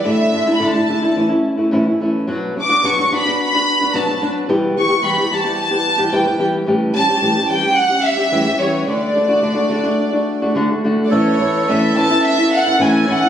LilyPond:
<<
  \new Staff \with { instrumentName = "Violin section" } { \time 4/4 \key d \major \tempo 4 = 109 e''8.~ e''32 b''32 a''4 r2 | r8 d'''8 cis'''8 b''8 b''4 a''8 r8 | r8 cis'''8 b''8 a''8 a''4 g''8 r8 | r8 a''4 g''8 fis''8 e''4 cis''8 |
d''2. r8. r32 d''32 | \key a \major cis''4 e''8 a''8 e''8 fis''8 gis''8 fis''8 | }
  \new Staff \with { instrumentName = "Melodica" } { \time 4/4 \key d \major r1 | r1 | r1 | r1 |
r1 | \key a \major a'1 | }
  \new Staff \with { instrumentName = "Nylon-string guitar" } { \time 4/4 \key d \major <a, d a d' e'>8 <d a d' e'>16 <a d' e'>16 <a, d a d' e'>16 <a d' e'>16 <d a d' e'>16 <a d' e'>16 <a, e a cis' e'>16 <a cis' e'>8 <a cis' e'>16 <a, e a cis' e'>16 <a cis' e'>16 <e a cis' e'>8 | <b, fis b d' fis'>8 <fis b d' fis'>16 <b d' fis'>16 <b, fis b d' fis'>16 <b d' fis'>16 <fis b d' fis'>16 <b d' fis'>8 <b d' fis'>8 <b d' fis'>16 <b, fis b d' fis'>16 <b d' fis'>16 <fis b d' fis'>8 | <e, b, e g b g'>8 <e g b g'>16 <e g b g'>16 <e, b, e g b g'>16 <e g b g'>16 <e g b g'>16 <e g b g'>8 <e g b g'>8 <e g b g'>16 <e, b, e g b g'>16 <e g b g'>16 <e g b g'>8 | <a, e g cis' g'>8 <e g cis' g'>16 <g cis' g'>16 <a, e g cis' g'>16 <g cis' g'>16 <e g cis' g'>16 <g cis' g'>8 <g cis' g'>8 <g cis' g'>16 <a, e g cis' g'>16 <g cis' g'>16 <e g cis' g'>8 |
<d a d' fis'>8 <d a d' fis'>16 <a d' fis'>16 <d a d' fis'>16 <a d' fis'>16 <d a d' fis'>16 <a d' fis'>8 <a d' fis'>8 <a d' fis'>16 <d a d' fis'>16 <a d' fis'>16 <d a d' fis'>8 | \key a \major <a, e b cis' e'>8 <e b cis' e'>8 <a, e b cis' e'>8 <e b cis' e'>16 <b cis' e'>8 <b cis' e'>8 <b cis' e'>16 <a, e b cis' e'>8 <e b cis' e'>16 <b cis' e'>16 | }
>>